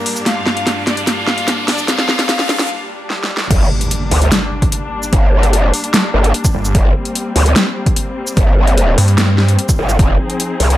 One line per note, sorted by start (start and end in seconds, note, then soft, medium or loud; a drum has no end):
0.00 3.47 G2 medium
0.00 3.47 G3 medium
0.00 0.18 A#3 medium
0.00 3.47 A#3 medium
0.00 3.47 D4 medium
0.00 0.18 A#4 loud
0.00 riser medium
0.06 open hi-hat medium
0.16 shaker soft
0.26 0.79 F4 medium
0.26 0.79 F5 medium
0.26 snare medium
0.26 closed hi-hat medium
0.46 snare medium
0.57 closed hi-hat medium
0.67 snare medium
0.67 closed hi-hat medium
0.87 1.06 D4 medium
0.87 1.06 D5 medium
0.87 snare medium
0.87 closed hi-hat medium
0.97 closed hi-hat medium
1.07 1.60 F4 medium
1.07 1.60 F5 medium
1.07 snare medium
1.07 closed hi-hat medium
1.27 snare medium
1.38 closed hi-hat medium
1.48 snare medium
1.48 closed hi-hat medium
1.68 1.87 D4 medium
1.68 1.87 D5 medium
1.68 snare medium
1.68 open hi-hat medium
1.78 shaker medium
1.88 2.27 F4 medium
1.88 2.27 F5 loud
1.88 snare medium
1.88 closed hi-hat medium
1.99 snare medium
2.09 snare loud
2.19 snare medium
2.19 closed hi-hat soft
2.29 2.68 F4 medium
2.29 2.68 F5 loud
2.29 snare loud
2.29 closed hi-hat medium
2.39 snare medium
2.49 snare loud
2.49 closed hi-hat soft
2.59 snare medium
2.59 closed hi-hat medium
2.69 swell medium
3.10 snare medium
3.24 snare medium
3.37 snare loud
3.50 3.69 G1 loud
3.50 9.95 G3 medium
3.50 9.95 A#3 medium
3.50 6.72 D4 medium
3.50 kick loud
3.50 closed hi-hat medium
3.50 crash loud
3.50 impact medium
3.81 closed hi-hat medium
3.91 closed hi-hat medium
4.11 4.30 D2 loud
4.11 open hi-hat medium
4.22 closed hi-hat medium
4.32 snare loud
4.32 closed hi-hat medium
4.62 kick medium
4.62 closed hi-hat medium
4.72 closed hi-hat medium
5.03 shaker medium
5.13 5.55 G1 loud
5.13 kick loud
5.13 closed hi-hat medium
5.43 closed hi-hat medium
5.53 5.72 F#1 loud
5.53 closed hi-hat medium
5.74 open hi-hat medium
5.84 closed hi-hat medium
5.94 snare loud
5.94 closed hi-hat medium
6.14 6.33 G1 medium
6.24 closed hi-hat medium
6.34 closed hi-hat medium
6.45 kick medium
6.45 shaker medium
6.55 6.73 G1 loud
6.65 shaker medium
6.75 6.94 G1 loud
6.75 10.77 C4 medium
6.75 kick loud
6.75 closed hi-hat medium
7.05 closed hi-hat medium
7.15 closed hi-hat medium
7.36 7.54 D2 medium
7.36 open hi-hat medium
7.46 closed hi-hat medium
7.56 snare loud
7.56 closed hi-hat medium
7.86 kick medium
7.86 closed hi-hat medium
7.96 closed hi-hat medium
8.27 shaker medium
8.37 8.96 G1 loud
8.37 kick loud
8.37 closed hi-hat medium
8.67 closed hi-hat medium
8.78 closed hi-hat medium
8.98 9.57 G2 loud
8.98 open hi-hat medium
9.08 closed hi-hat medium
9.18 snare loud
9.18 closed hi-hat medium
9.38 snare medium
9.48 closed hi-hat medium
9.59 closed hi-hat medium
9.69 kick medium
9.69 shaker medium
9.79 9.98 G1 loud
9.89 shaker medium
9.99 10.18 F1 loud
9.99 10.77 F3 medium
9.99 10.77 D#4 medium
9.99 10.77 G#4 medium
9.99 kick loud
9.99 closed hi-hat medium
10.30 closed hi-hat soft
10.40 closed hi-hat medium
10.60 10.77 C2 medium
10.60 open hi-hat medium
10.70 closed hi-hat medium